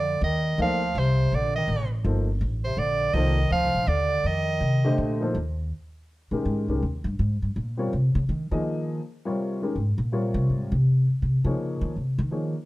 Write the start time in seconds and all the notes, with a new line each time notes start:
Already playing: F2 D3 D5
0.21 D#2 D#3 D#5
0.58 D2 F3 A#3 D#4 A4 D5 F5
0.95 C2 C5
0.99 C3
1.32 A#1 D5
1.36 D3
1.56 D#3 D#5
1.68 A1
2.04 G1 F3 A#3 D#4 A4 C5
2.41 A1
2.64 C3 C5
2.77 A#1 D3 D5
3.14 C2 D#3 F3 A#3 D#4 A4 C5 D#5
3.51 D2 F3 F5
3.63 C2
3.75 A#1
3.87 D#2 D3 D5
4.24 F2 D#3 D#5
4.61 C3
4.85 D3 A3 G4 C5 D#5
4.98 A#2
5.21 F3 A#3 D#4 A4 C5
5.35 D#2
6.31 A#2 D#3 G#3 C#4 G4 A#4
6.45 G#2
6.68 C2 D#3 G#3 C#4 G4 A#4
6.83 D#2
7.04 G2
7.19 G#2
7.42 G2
7.56 A#2
7.77 B2 G3 C4 F4 A#4 C#5
7.93 C3
8.15 C#3
8.29 D#3
8.51 D#3 F3 A#3 D#4 G#4 D#5
9.25 C3 G3 F4 A#4 C#5
9.62 D#3 G#3 C#4 G4 A#4
9.76 G#2
9.98 A#2
10.12 C3 G3 F4 A#4 C#5
10.34 C3
10.50 G#2
10.72 C3
11.22 C3
11.44 C#3 F3 A#3 D#4 G#4 C#5
11.81 D#3
11.96 C3
12.18 D#3
12.31 F3 A#3 D#4 G#4 C#5